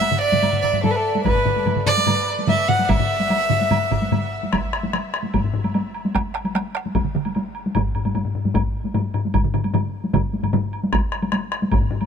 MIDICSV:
0, 0, Header, 1, 4, 480
1, 0, Start_track
1, 0, Tempo, 408441
1, 1478, Time_signature, 4, 2, 24, 8
1, 7223, Tempo, 397351
1, 14368, End_track
2, 0, Start_track
2, 0, Title_t, "Violin"
2, 0, Program_c, 0, 40
2, 0, Note_on_c, 0, 76, 92
2, 234, Note_off_c, 0, 76, 0
2, 249, Note_on_c, 0, 74, 92
2, 709, Note_off_c, 0, 74, 0
2, 730, Note_on_c, 0, 74, 71
2, 966, Note_off_c, 0, 74, 0
2, 977, Note_on_c, 0, 69, 72
2, 1067, Note_on_c, 0, 71, 59
2, 1084, Note_off_c, 0, 69, 0
2, 1125, Note_on_c, 0, 69, 71
2, 1143, Note_off_c, 0, 71, 0
2, 1353, Note_off_c, 0, 69, 0
2, 1468, Note_on_c, 0, 71, 72
2, 1923, Note_off_c, 0, 71, 0
2, 2188, Note_on_c, 0, 74, 106
2, 2643, Note_off_c, 0, 74, 0
2, 2925, Note_on_c, 0, 76, 91
2, 3149, Note_on_c, 0, 78, 90
2, 3167, Note_off_c, 0, 76, 0
2, 3340, Note_off_c, 0, 78, 0
2, 3340, Note_on_c, 0, 78, 64
2, 3395, Note_on_c, 0, 76, 100
2, 3412, Note_off_c, 0, 78, 0
2, 5076, Note_off_c, 0, 76, 0
2, 14368, End_track
3, 0, Start_track
3, 0, Title_t, "Taiko and cinematic ensemble drums"
3, 16, Note_on_c, 9, 48, 73
3, 133, Note_on_c, 9, 45, 88
3, 134, Note_off_c, 9, 48, 0
3, 137, Note_on_c, 9, 47, 95
3, 250, Note_off_c, 9, 45, 0
3, 254, Note_off_c, 9, 47, 0
3, 380, Note_on_c, 9, 45, 92
3, 381, Note_on_c, 9, 48, 56
3, 386, Note_on_c, 9, 47, 91
3, 497, Note_off_c, 9, 45, 0
3, 499, Note_off_c, 9, 48, 0
3, 500, Note_on_c, 9, 48, 73
3, 503, Note_off_c, 9, 47, 0
3, 504, Note_on_c, 9, 45, 67
3, 508, Note_on_c, 9, 47, 70
3, 617, Note_off_c, 9, 48, 0
3, 621, Note_off_c, 9, 45, 0
3, 621, Note_on_c, 9, 45, 72
3, 623, Note_off_c, 9, 47, 0
3, 623, Note_on_c, 9, 47, 77
3, 739, Note_off_c, 9, 45, 0
3, 741, Note_off_c, 9, 47, 0
3, 742, Note_on_c, 9, 45, 68
3, 751, Note_on_c, 9, 47, 70
3, 860, Note_off_c, 9, 45, 0
3, 863, Note_on_c, 9, 45, 79
3, 864, Note_off_c, 9, 47, 0
3, 864, Note_on_c, 9, 47, 62
3, 866, Note_on_c, 9, 48, 52
3, 980, Note_off_c, 9, 45, 0
3, 980, Note_on_c, 9, 45, 104
3, 982, Note_off_c, 9, 47, 0
3, 983, Note_off_c, 9, 48, 0
3, 986, Note_on_c, 9, 48, 75
3, 989, Note_on_c, 9, 47, 89
3, 1098, Note_off_c, 9, 45, 0
3, 1104, Note_off_c, 9, 48, 0
3, 1107, Note_off_c, 9, 47, 0
3, 1353, Note_on_c, 9, 48, 60
3, 1464, Note_on_c, 9, 45, 66
3, 1471, Note_off_c, 9, 48, 0
3, 1474, Note_on_c, 9, 48, 78
3, 1476, Note_on_c, 9, 47, 70
3, 1477, Note_on_c, 9, 41, 97
3, 1581, Note_off_c, 9, 45, 0
3, 1586, Note_on_c, 9, 45, 72
3, 1591, Note_off_c, 9, 47, 0
3, 1591, Note_on_c, 9, 47, 67
3, 1592, Note_off_c, 9, 48, 0
3, 1594, Note_off_c, 9, 41, 0
3, 1704, Note_off_c, 9, 45, 0
3, 1708, Note_off_c, 9, 47, 0
3, 1709, Note_on_c, 9, 45, 93
3, 1714, Note_on_c, 9, 47, 95
3, 1826, Note_off_c, 9, 45, 0
3, 1831, Note_off_c, 9, 47, 0
3, 1840, Note_on_c, 9, 48, 58
3, 1947, Note_on_c, 9, 45, 68
3, 1952, Note_on_c, 9, 47, 69
3, 1957, Note_off_c, 9, 48, 0
3, 1957, Note_on_c, 9, 48, 71
3, 2064, Note_off_c, 9, 45, 0
3, 2066, Note_off_c, 9, 47, 0
3, 2066, Note_on_c, 9, 47, 73
3, 2070, Note_on_c, 9, 45, 69
3, 2075, Note_off_c, 9, 48, 0
3, 2184, Note_off_c, 9, 47, 0
3, 2188, Note_off_c, 9, 45, 0
3, 2188, Note_on_c, 9, 45, 98
3, 2193, Note_on_c, 9, 47, 89
3, 2306, Note_off_c, 9, 45, 0
3, 2311, Note_off_c, 9, 47, 0
3, 2320, Note_on_c, 9, 48, 55
3, 2427, Note_on_c, 9, 47, 97
3, 2435, Note_on_c, 9, 45, 93
3, 2438, Note_off_c, 9, 48, 0
3, 2439, Note_on_c, 9, 48, 71
3, 2544, Note_off_c, 9, 47, 0
3, 2553, Note_off_c, 9, 45, 0
3, 2557, Note_off_c, 9, 48, 0
3, 2806, Note_on_c, 9, 48, 54
3, 2907, Note_on_c, 9, 47, 102
3, 2915, Note_on_c, 9, 45, 97
3, 2923, Note_off_c, 9, 48, 0
3, 2923, Note_on_c, 9, 48, 72
3, 3025, Note_off_c, 9, 47, 0
3, 3032, Note_off_c, 9, 45, 0
3, 3041, Note_off_c, 9, 48, 0
3, 3155, Note_on_c, 9, 47, 104
3, 3160, Note_on_c, 9, 45, 99
3, 3273, Note_off_c, 9, 47, 0
3, 3277, Note_off_c, 9, 45, 0
3, 3280, Note_on_c, 9, 48, 60
3, 3397, Note_off_c, 9, 48, 0
3, 3397, Note_on_c, 9, 47, 95
3, 3399, Note_on_c, 9, 45, 96
3, 3399, Note_on_c, 9, 48, 74
3, 3400, Note_on_c, 9, 41, 97
3, 3514, Note_off_c, 9, 47, 0
3, 3517, Note_off_c, 9, 45, 0
3, 3517, Note_off_c, 9, 48, 0
3, 3518, Note_off_c, 9, 41, 0
3, 3519, Note_on_c, 9, 45, 101
3, 3522, Note_on_c, 9, 47, 90
3, 3637, Note_off_c, 9, 45, 0
3, 3639, Note_off_c, 9, 47, 0
3, 3758, Note_on_c, 9, 48, 56
3, 3875, Note_off_c, 9, 48, 0
3, 3881, Note_on_c, 9, 48, 72
3, 3999, Note_off_c, 9, 48, 0
3, 4117, Note_on_c, 9, 45, 107
3, 4119, Note_on_c, 9, 47, 98
3, 4235, Note_off_c, 9, 45, 0
3, 4237, Note_off_c, 9, 47, 0
3, 4242, Note_on_c, 9, 48, 57
3, 4359, Note_off_c, 9, 48, 0
3, 4359, Note_on_c, 9, 45, 97
3, 4359, Note_on_c, 9, 47, 101
3, 4365, Note_on_c, 9, 48, 79
3, 4476, Note_off_c, 9, 45, 0
3, 4477, Note_off_c, 9, 47, 0
3, 4483, Note_off_c, 9, 48, 0
3, 4598, Note_on_c, 9, 45, 95
3, 4603, Note_on_c, 9, 41, 77
3, 4603, Note_on_c, 9, 47, 93
3, 4716, Note_off_c, 9, 45, 0
3, 4720, Note_off_c, 9, 47, 0
3, 4721, Note_off_c, 9, 41, 0
3, 4727, Note_on_c, 9, 48, 61
3, 4841, Note_on_c, 9, 45, 100
3, 4843, Note_on_c, 9, 47, 98
3, 4845, Note_off_c, 9, 48, 0
3, 4845, Note_on_c, 9, 48, 74
3, 4958, Note_off_c, 9, 45, 0
3, 4960, Note_off_c, 9, 47, 0
3, 4962, Note_off_c, 9, 48, 0
3, 5208, Note_on_c, 9, 48, 63
3, 5318, Note_on_c, 9, 37, 79
3, 5323, Note_off_c, 9, 48, 0
3, 5323, Note_on_c, 9, 48, 92
3, 5325, Note_on_c, 9, 41, 101
3, 5436, Note_off_c, 9, 37, 0
3, 5441, Note_off_c, 9, 48, 0
3, 5443, Note_off_c, 9, 41, 0
3, 5560, Note_on_c, 9, 37, 85
3, 5678, Note_off_c, 9, 37, 0
3, 5680, Note_on_c, 9, 48, 71
3, 5797, Note_off_c, 9, 48, 0
3, 5798, Note_on_c, 9, 37, 83
3, 5799, Note_on_c, 9, 48, 74
3, 5916, Note_off_c, 9, 37, 0
3, 5917, Note_off_c, 9, 48, 0
3, 6037, Note_on_c, 9, 37, 87
3, 6152, Note_on_c, 9, 48, 58
3, 6155, Note_off_c, 9, 37, 0
3, 6270, Note_off_c, 9, 48, 0
3, 6274, Note_on_c, 9, 41, 96
3, 6274, Note_on_c, 9, 48, 83
3, 6277, Note_on_c, 9, 45, 76
3, 6391, Note_off_c, 9, 41, 0
3, 6391, Note_off_c, 9, 48, 0
3, 6394, Note_off_c, 9, 45, 0
3, 6394, Note_on_c, 9, 45, 81
3, 6506, Note_off_c, 9, 45, 0
3, 6506, Note_on_c, 9, 45, 112
3, 6624, Note_off_c, 9, 45, 0
3, 6632, Note_on_c, 9, 48, 62
3, 6749, Note_off_c, 9, 48, 0
3, 6755, Note_on_c, 9, 48, 79
3, 6872, Note_off_c, 9, 48, 0
3, 7110, Note_on_c, 9, 48, 65
3, 7224, Note_off_c, 9, 48, 0
3, 7224, Note_on_c, 9, 48, 81
3, 7229, Note_on_c, 9, 41, 85
3, 7231, Note_on_c, 9, 37, 85
3, 7344, Note_off_c, 9, 48, 0
3, 7350, Note_off_c, 9, 41, 0
3, 7352, Note_off_c, 9, 37, 0
3, 7474, Note_on_c, 9, 37, 75
3, 7591, Note_on_c, 9, 48, 58
3, 7594, Note_off_c, 9, 37, 0
3, 7711, Note_off_c, 9, 48, 0
3, 7711, Note_on_c, 9, 48, 72
3, 7713, Note_on_c, 9, 37, 80
3, 7832, Note_off_c, 9, 48, 0
3, 7834, Note_off_c, 9, 37, 0
3, 7953, Note_on_c, 9, 37, 86
3, 8074, Note_off_c, 9, 37, 0
3, 8082, Note_on_c, 9, 48, 56
3, 8194, Note_on_c, 9, 41, 109
3, 8197, Note_off_c, 9, 48, 0
3, 8197, Note_on_c, 9, 47, 74
3, 8197, Note_on_c, 9, 48, 78
3, 8311, Note_off_c, 9, 47, 0
3, 8311, Note_on_c, 9, 47, 78
3, 8314, Note_off_c, 9, 41, 0
3, 8318, Note_off_c, 9, 48, 0
3, 8432, Note_off_c, 9, 47, 0
3, 8433, Note_on_c, 9, 47, 102
3, 8554, Note_off_c, 9, 47, 0
3, 8563, Note_on_c, 9, 48, 56
3, 8684, Note_off_c, 9, 48, 0
3, 8689, Note_on_c, 9, 48, 73
3, 8810, Note_off_c, 9, 48, 0
3, 9051, Note_on_c, 9, 48, 60
3, 9160, Note_on_c, 9, 45, 110
3, 9170, Note_off_c, 9, 48, 0
3, 9170, Note_on_c, 9, 41, 116
3, 9170, Note_on_c, 9, 48, 80
3, 9281, Note_off_c, 9, 45, 0
3, 9290, Note_off_c, 9, 41, 0
3, 9291, Note_off_c, 9, 48, 0
3, 9410, Note_on_c, 9, 45, 75
3, 9524, Note_off_c, 9, 45, 0
3, 9524, Note_on_c, 9, 45, 84
3, 9529, Note_on_c, 9, 48, 59
3, 9638, Note_off_c, 9, 45, 0
3, 9638, Note_on_c, 9, 45, 77
3, 9648, Note_off_c, 9, 48, 0
3, 9648, Note_on_c, 9, 48, 66
3, 9759, Note_off_c, 9, 45, 0
3, 9762, Note_on_c, 9, 45, 75
3, 9769, Note_off_c, 9, 48, 0
3, 9883, Note_off_c, 9, 45, 0
3, 9885, Note_on_c, 9, 45, 79
3, 10005, Note_off_c, 9, 45, 0
3, 10005, Note_on_c, 9, 45, 72
3, 10009, Note_on_c, 9, 48, 58
3, 10119, Note_off_c, 9, 45, 0
3, 10119, Note_on_c, 9, 45, 112
3, 10128, Note_on_c, 9, 41, 111
3, 10129, Note_off_c, 9, 48, 0
3, 10129, Note_on_c, 9, 48, 75
3, 10240, Note_off_c, 9, 45, 0
3, 10249, Note_off_c, 9, 41, 0
3, 10250, Note_off_c, 9, 48, 0
3, 10493, Note_on_c, 9, 48, 54
3, 10603, Note_on_c, 9, 45, 114
3, 10613, Note_off_c, 9, 48, 0
3, 10616, Note_on_c, 9, 48, 69
3, 10724, Note_off_c, 9, 45, 0
3, 10736, Note_off_c, 9, 48, 0
3, 10843, Note_on_c, 9, 45, 105
3, 10964, Note_off_c, 9, 45, 0
3, 10973, Note_on_c, 9, 48, 58
3, 11080, Note_on_c, 9, 45, 78
3, 11086, Note_on_c, 9, 47, 73
3, 11089, Note_on_c, 9, 41, 106
3, 11090, Note_off_c, 9, 48, 0
3, 11090, Note_on_c, 9, 48, 74
3, 11201, Note_off_c, 9, 45, 0
3, 11202, Note_on_c, 9, 45, 74
3, 11207, Note_off_c, 9, 47, 0
3, 11209, Note_on_c, 9, 47, 75
3, 11210, Note_off_c, 9, 41, 0
3, 11210, Note_off_c, 9, 48, 0
3, 11322, Note_off_c, 9, 45, 0
3, 11322, Note_on_c, 9, 45, 105
3, 11330, Note_off_c, 9, 47, 0
3, 11330, Note_on_c, 9, 47, 97
3, 11443, Note_off_c, 9, 45, 0
3, 11448, Note_on_c, 9, 48, 58
3, 11451, Note_off_c, 9, 47, 0
3, 11559, Note_on_c, 9, 45, 106
3, 11568, Note_off_c, 9, 48, 0
3, 11568, Note_on_c, 9, 48, 70
3, 11571, Note_on_c, 9, 47, 107
3, 11680, Note_off_c, 9, 45, 0
3, 11689, Note_off_c, 9, 48, 0
3, 11692, Note_off_c, 9, 47, 0
3, 11925, Note_on_c, 9, 48, 57
3, 12041, Note_on_c, 9, 45, 102
3, 12042, Note_on_c, 9, 41, 115
3, 12046, Note_off_c, 9, 48, 0
3, 12046, Note_on_c, 9, 47, 110
3, 12046, Note_on_c, 9, 48, 76
3, 12162, Note_off_c, 9, 45, 0
3, 12163, Note_off_c, 9, 41, 0
3, 12166, Note_off_c, 9, 47, 0
3, 12167, Note_off_c, 9, 48, 0
3, 12286, Note_on_c, 9, 48, 58
3, 12401, Note_on_c, 9, 45, 78
3, 12402, Note_on_c, 9, 47, 75
3, 12405, Note_off_c, 9, 48, 0
3, 12405, Note_on_c, 9, 48, 60
3, 12519, Note_off_c, 9, 45, 0
3, 12519, Note_on_c, 9, 45, 108
3, 12521, Note_off_c, 9, 47, 0
3, 12521, Note_on_c, 9, 47, 109
3, 12526, Note_off_c, 9, 48, 0
3, 12526, Note_on_c, 9, 48, 80
3, 12640, Note_off_c, 9, 45, 0
3, 12642, Note_off_c, 9, 47, 0
3, 12647, Note_off_c, 9, 48, 0
3, 12888, Note_on_c, 9, 48, 70
3, 12997, Note_on_c, 9, 37, 82
3, 13001, Note_off_c, 9, 48, 0
3, 13001, Note_on_c, 9, 48, 89
3, 13004, Note_on_c, 9, 41, 101
3, 13118, Note_off_c, 9, 37, 0
3, 13122, Note_off_c, 9, 48, 0
3, 13125, Note_off_c, 9, 41, 0
3, 13231, Note_on_c, 9, 37, 82
3, 13352, Note_off_c, 9, 37, 0
3, 13358, Note_on_c, 9, 48, 68
3, 13472, Note_on_c, 9, 37, 86
3, 13477, Note_off_c, 9, 48, 0
3, 13477, Note_on_c, 9, 48, 81
3, 13592, Note_off_c, 9, 37, 0
3, 13598, Note_off_c, 9, 48, 0
3, 13712, Note_on_c, 9, 37, 85
3, 13833, Note_off_c, 9, 37, 0
3, 13838, Note_on_c, 9, 48, 72
3, 13949, Note_on_c, 9, 45, 82
3, 13958, Note_on_c, 9, 41, 116
3, 13959, Note_off_c, 9, 48, 0
3, 13959, Note_on_c, 9, 48, 94
3, 14069, Note_off_c, 9, 45, 0
3, 14069, Note_on_c, 9, 45, 78
3, 14079, Note_off_c, 9, 41, 0
3, 14080, Note_off_c, 9, 48, 0
3, 14182, Note_off_c, 9, 45, 0
3, 14182, Note_on_c, 9, 45, 106
3, 14303, Note_off_c, 9, 45, 0
3, 14313, Note_on_c, 9, 48, 67
3, 14368, Note_off_c, 9, 48, 0
3, 14368, End_track
4, 0, Start_track
4, 0, Title_t, "Drums"
4, 16, Note_on_c, 9, 76, 46
4, 134, Note_off_c, 9, 76, 0
4, 503, Note_on_c, 9, 76, 58
4, 620, Note_off_c, 9, 76, 0
4, 750, Note_on_c, 9, 76, 40
4, 867, Note_off_c, 9, 76, 0
4, 990, Note_on_c, 9, 76, 37
4, 1108, Note_off_c, 9, 76, 0
4, 1475, Note_on_c, 9, 76, 56
4, 1593, Note_off_c, 9, 76, 0
4, 1958, Note_on_c, 9, 76, 43
4, 2076, Note_off_c, 9, 76, 0
4, 2434, Note_on_c, 9, 76, 59
4, 2551, Note_off_c, 9, 76, 0
4, 2676, Note_on_c, 9, 76, 45
4, 2793, Note_off_c, 9, 76, 0
4, 2917, Note_on_c, 9, 76, 42
4, 3035, Note_off_c, 9, 76, 0
4, 3399, Note_on_c, 9, 76, 63
4, 3517, Note_off_c, 9, 76, 0
4, 3880, Note_on_c, 9, 76, 50
4, 3998, Note_off_c, 9, 76, 0
4, 4359, Note_on_c, 9, 76, 64
4, 4477, Note_off_c, 9, 76, 0
4, 4600, Note_on_c, 9, 76, 42
4, 4718, Note_off_c, 9, 76, 0
4, 4843, Note_on_c, 9, 76, 44
4, 4960, Note_off_c, 9, 76, 0
4, 5321, Note_on_c, 9, 76, 69
4, 5438, Note_off_c, 9, 76, 0
4, 5563, Note_on_c, 9, 76, 46
4, 5680, Note_off_c, 9, 76, 0
4, 5798, Note_on_c, 9, 76, 48
4, 5915, Note_off_c, 9, 76, 0
4, 6272, Note_on_c, 9, 76, 61
4, 6389, Note_off_c, 9, 76, 0
4, 6631, Note_on_c, 9, 76, 46
4, 6748, Note_off_c, 9, 76, 0
4, 6748, Note_on_c, 9, 76, 49
4, 6866, Note_off_c, 9, 76, 0
4, 6986, Note_on_c, 9, 76, 46
4, 7104, Note_off_c, 9, 76, 0
4, 7223, Note_on_c, 9, 76, 68
4, 7343, Note_off_c, 9, 76, 0
4, 7464, Note_on_c, 9, 76, 52
4, 7585, Note_off_c, 9, 76, 0
4, 7591, Note_on_c, 9, 76, 46
4, 7708, Note_off_c, 9, 76, 0
4, 7708, Note_on_c, 9, 76, 49
4, 7829, Note_off_c, 9, 76, 0
4, 8193, Note_on_c, 9, 76, 56
4, 8313, Note_off_c, 9, 76, 0
4, 8557, Note_on_c, 9, 76, 47
4, 8675, Note_off_c, 9, 76, 0
4, 8675, Note_on_c, 9, 76, 43
4, 8795, Note_off_c, 9, 76, 0
4, 8916, Note_on_c, 9, 76, 44
4, 9036, Note_off_c, 9, 76, 0
4, 9158, Note_on_c, 9, 76, 63
4, 9278, Note_off_c, 9, 76, 0
4, 9400, Note_on_c, 9, 76, 43
4, 9521, Note_off_c, 9, 76, 0
4, 9524, Note_on_c, 9, 76, 42
4, 9643, Note_off_c, 9, 76, 0
4, 9643, Note_on_c, 9, 76, 45
4, 9764, Note_off_c, 9, 76, 0
4, 10126, Note_on_c, 9, 76, 59
4, 10247, Note_off_c, 9, 76, 0
4, 10605, Note_on_c, 9, 76, 45
4, 10726, Note_off_c, 9, 76, 0
4, 10841, Note_on_c, 9, 76, 45
4, 10961, Note_off_c, 9, 76, 0
4, 11081, Note_on_c, 9, 76, 60
4, 11202, Note_off_c, 9, 76, 0
4, 11322, Note_on_c, 9, 76, 46
4, 11443, Note_off_c, 9, 76, 0
4, 11446, Note_on_c, 9, 76, 45
4, 11565, Note_off_c, 9, 76, 0
4, 11565, Note_on_c, 9, 76, 49
4, 11686, Note_off_c, 9, 76, 0
4, 12048, Note_on_c, 9, 76, 56
4, 12168, Note_off_c, 9, 76, 0
4, 12406, Note_on_c, 9, 76, 47
4, 12520, Note_off_c, 9, 76, 0
4, 12520, Note_on_c, 9, 76, 39
4, 12640, Note_off_c, 9, 76, 0
4, 12761, Note_on_c, 9, 76, 44
4, 12882, Note_off_c, 9, 76, 0
4, 13000, Note_on_c, 9, 76, 65
4, 13121, Note_off_c, 9, 76, 0
4, 13238, Note_on_c, 9, 76, 47
4, 13357, Note_off_c, 9, 76, 0
4, 13357, Note_on_c, 9, 76, 47
4, 13478, Note_off_c, 9, 76, 0
4, 13479, Note_on_c, 9, 76, 47
4, 13599, Note_off_c, 9, 76, 0
4, 13951, Note_on_c, 9, 76, 60
4, 14072, Note_off_c, 9, 76, 0
4, 14303, Note_on_c, 9, 76, 46
4, 14368, Note_off_c, 9, 76, 0
4, 14368, End_track
0, 0, End_of_file